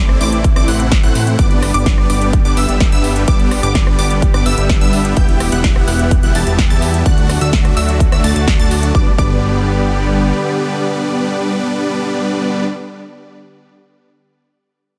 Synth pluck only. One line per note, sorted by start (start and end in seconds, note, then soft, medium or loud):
0.00 0.18 D6 loud
0.21 0.44 D6 loud
0.56 0.66 D6 loud
0.68 0.91 F#6 loud
1.04 1.14 F#6 loud
1.15 1.36 F#6 loud
1.39 1.71 D6 loud
1.74 2.07 D6 loud
2.10 2.33 D6 loud
2.45 2.55 D6 loud
2.57 2.66 E6 loud
2.69 2.90 E6 medium
2.92 3.25 E6 loud
3.28 3.60 D6 loud
3.63 3.96 D6 loud
3.99 4.22 D6 loud
4.34 4.44 D6 loud
4.46 4.55 E6 loud
4.58 4.79 E6 medium
4.81 5.14 E6 loud
5.17 5.49 G6 loud
5.52 5.85 F#6 loud
5.88 6.11 F#6 loud
6.23 6.33 F#6 loud
6.35 6.44 A6 loud
6.47 6.68 A6 medium
6.70 7.03 A6 loud
7.06 7.38 F#6 loud
7.41 7.74 E6 loud
7.77 8.00 E6 loud
8.12 8.22 E6 medium
8.24 8.33 A6 loud
8.36 8.57 A6 medium
8.60 8.92 A6 loud
8.95 9.08 D6 medium
9.19 12.65 D6 medium